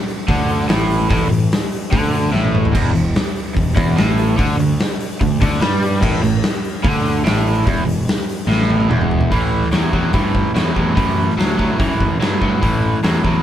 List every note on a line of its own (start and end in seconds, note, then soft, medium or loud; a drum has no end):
0.08 open hi-hat medium
0.28 0.66 D2 loud
0.28 0.68 D3 loud
0.28 kick loud
0.28 open hi-hat medium
0.49 open hi-hat medium
0.61 snare soft
0.68 1.07 A1 loud
0.68 1.08 A2 loud
0.68 snare loud
0.68 open hi-hat medium
0.90 open hi-hat medium
1.09 1.29 A1 medium
1.09 1.28 A2 loud
1.09 kick loud
1.09 open hi-hat medium
1.30 1.50 A1 medium
1.30 1.46 A2 medium
1.30 open hi-hat medium
1.52 snare loud
1.52 open hi-hat medium
1.72 open hi-hat medium
1.91 2.30 D2 loud
1.91 2.31 D3 loud
1.91 kick loud
1.91 open hi-hat medium
2.13 open hi-hat medium
2.25 snare soft
2.32 2.71 A1 loud
2.32 2.73 A2 loud
2.32 snare medium
2.45 mid tom medium
2.55 mid tom medium
2.65 floor tom medium
2.72 2.94 E1 loud
2.72 2.92 E2 loud
2.72 kick loud
2.72 crash loud
2.94 3.13 E1 medium
2.94 3.10 E2 medium
2.94 open hi-hat medium
3.15 snare loud
3.15 open hi-hat medium
3.36 open hi-hat medium
3.55 3.75 E1 medium
3.55 3.72 E2 medium
3.55 kick medium
3.55 open hi-hat medium
3.75 3.96 E1 medium
3.75 3.96 E2 loud
3.75 kick loud
3.75 open hi-hat medium
3.89 snare soft
3.96 4.36 A1 medium
3.96 4.37 A2 loud
3.96 snare loud
3.96 open hi-hat medium
4.18 open hi-hat medium
4.37 4.58 D2 medium
4.37 4.57 D3 loud
4.37 kick loud
4.37 open hi-hat medium
4.58 4.78 D2 medium
4.58 4.75 D3 medium
4.58 open hi-hat medium
4.79 snare loud
4.79 open hi-hat medium
5.00 open hi-hat medium
5.21 5.40 D2 medium
5.21 5.37 D3 medium
5.21 kick medium
5.21 open hi-hat medium
5.41 5.60 D2 medium
5.41 5.61 D3 loud
5.41 kick loud
5.41 open hi-hat medium
5.53 snare soft
5.61 5.99 G2 loud
5.61 6.02 G3 loud
5.61 snare loud
5.61 open hi-hat medium
5.83 open hi-hat medium
6.01 6.21 A1 medium
6.01 6.22 A2 loud
6.01 kick loud
6.01 crash loud
6.22 6.42 A1 medium
6.22 6.39 A2 medium
6.22 open hi-hat medium
6.43 snare loud
6.43 open hi-hat medium
6.64 open hi-hat medium
6.83 7.22 D2 loud
6.83 7.24 D3 loud
6.83 kick loud
6.83 open hi-hat medium
7.05 open hi-hat medium
7.24 7.63 A1 loud
7.24 7.65 A2 loud
7.24 snare loud
7.24 open hi-hat medium
7.47 open hi-hat medium
7.66 7.86 E1 loud
7.66 7.84 E2 loud
7.66 kick loud
7.66 open hi-hat medium
7.86 8.06 E1 medium
7.86 8.03 E2 medium
7.86 open hi-hat medium
8.08 snare loud
8.08 open hi-hat medium
8.29 open hi-hat medium
8.47 8.86 A1 loud
8.47 8.89 A2 loud
8.52 snare medium
8.62 snare medium
8.70 high tom medium
8.80 high tom medium
8.89 9.28 E1 loud
8.89 9.30 E2 loud
8.89 mid tom medium
9.01 mid tom medium
9.11 floor tom loud
9.21 floor tom medium
9.31 9.62 A1 medium
9.31 9.68 A2 medium
9.31 9.68 E3 medium
9.31 kick loud
9.31 open hi-hat medium
9.63 snare soft
9.72 9.88 E2 medium
9.72 9.91 A2 medium
9.72 9.91 F#3 medium
9.72 snare loud
9.72 open hi-hat soft
9.93 10.08 E2 medium
9.93 10.11 A2 medium
9.93 10.12 F#3 medium
9.93 kick medium
10.13 10.45 G2 medium
10.13 10.51 A2 medium
10.13 10.51 E3 medium
10.13 kick loud
10.13 open hi-hat medium
10.35 kick medium
10.54 10.71 E2 medium
10.54 10.73 A2 medium
10.54 10.73 F#3 medium
10.54 snare loud
10.54 open hi-hat soft
10.74 10.92 E2 medium
10.74 10.93 A2 medium
10.74 10.93 F#3 medium
10.74 kick medium
10.95 11.27 F#2 medium
10.95 11.33 A2 medium
10.95 11.33 E3 medium
10.95 kick loud
10.95 open hi-hat medium
11.30 snare soft
11.37 11.68 D2 medium
11.37 11.56 A2 medium
11.37 11.56 F#3 medium
11.37 snare loud
11.37 open hi-hat medium
11.57 11.76 A2 medium
11.57 11.77 F#3 medium
11.57 kick medium
11.78 11.95 F#2 medium
11.78 12.16 A2 medium
11.78 12.16 E3 medium
11.78 kick loud
11.78 open hi-hat medium
12.00 12.15 F#2 medium
12.00 kick medium
12.20 12.36 G2 medium
12.20 12.39 A2 medium
12.20 12.39 F#3 medium
12.20 snare loud
12.20 open hi-hat medium
12.41 12.57 G2 medium
12.41 12.60 A2 medium
12.41 12.60 F#3 medium
12.41 kick medium
12.61 12.93 A1 medium
12.61 12.98 A2 medium
12.61 12.99 E3 medium
12.61 kick loud
12.61 open hi-hat medium
13.03 13.19 E2 medium
13.03 13.22 A2 medium
13.03 13.22 F#3 medium
13.03 snare loud
13.03 open hi-hat medium
13.24 13.40 E2 medium
13.24 13.42 A2 medium
13.24 13.43 F#3 medium
13.24 kick medium